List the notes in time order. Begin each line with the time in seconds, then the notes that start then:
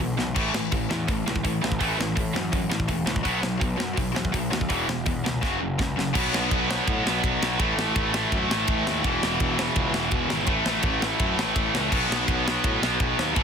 0.00 B1 E2 B2
0.16 B1 E2 B2, snare
0.36 A1 A2 E3 A3, kick, crash
0.53 A1 A2 E3, snare
0.72 A1 A2 E3, kick, open hi-hat
0.90 E2 A2 E3, snare
1.08 A1 A2 E3, kick, open hi-hat
1.26 C#2 A2 E3, snare
1.36 kick
1.43 A1 A2 E3, kick, open hi-hat
1.61 A1 A2 E3, snare
1.72 kick
1.79 A1 A2 E3 A3, kick, open hi-hat
1.97 A1 A2 E3, snare
2.15 A2 E3, kick, open hi-hat
2.33 F#2 A2 E3, snare
2.52 F#2 A2 E3, kick, open hi-hat
2.70 A1 A2 E3, snare
2.80 kick
2.88 E1 A2 E3, kick, open hi-hat
3.06 C#2 A2 E3, snare
3.16 kick
3.24 B1 B2 F#3 B3, kick, open hi-hat
3.42 B1 B2 F#3, snare
3.60 B1 B2 F#3, kick, open hi-hat
3.77 F#2 B2 F#3, snare
3.96 B1 B2 F#3, kick, open hi-hat
4.14 E2 B2 F#3, snare
4.25 kick
4.32 B1 B2 F#3, kick, open hi-hat
4.51 D#2 B2 F#3, snare
4.61 kick
4.69 E1 E2 B2 E3, kick, open hi-hat
4.87 E1 E2 B2, snare
5.06 E2 B2, kick, open hi-hat
5.24 C#2 E2 B2, snare
5.42 F#1 F#2 C#3 F#3, kick, snare
5.60 F#1 F#2 C#3
5.78 C#2 F#2 C#3, kick, snare
5.97 F#1 F#2 C#3, snare
6.14 B1 B2 F#3 B3, kick, crash
6.33 B1, snare
6.51 B1, kick, ride
6.68 B2 F#3 B3, snare
6.87 A2, kick, ride
7.06 B1, snare
7.24 B1, kick, ride
7.42 B1, snare
7.58 A1 A2 E3 A3, kick, ride
7.77 A1, snare
7.96 A1, kick, ride
8.12 A2 E3 A3, snare
8.32 F#2, kick, ride
8.49 A1, snare
8.68 A1, kick, ride
8.86 D#2, snare
9.02 E1 E2 B2 E3, kick, ride
9.22 E1, snare
9.40 E1, kick, ride
9.56 E2 B2 E3, snare
9.76 C#2, kick, ride
9.93 E1, snare
10.11 E1, kick, ride
10.29 G#1, snare
10.46 A1 A2 E3 A3, kick, ride
10.66 A1, snare
10.83 A1, kick, ride
11.00 A2 E3 A3, snare
11.19 F#2, kick, ride
11.37 A1, snare
11.56 A1, kick, ride
11.74 C#2, snare
11.90 B1 B2 F#3 B3, kick, crash
12.10 B1, snare
12.28 B1, kick, ride
12.45 B2 F#3 B3, snare
12.64 A2, kick, ride
12.82 B1, snare
13.00 B1, kick, ride
13.19 D#2, snare
13.35 A1 A2 E3 A3, kick, ride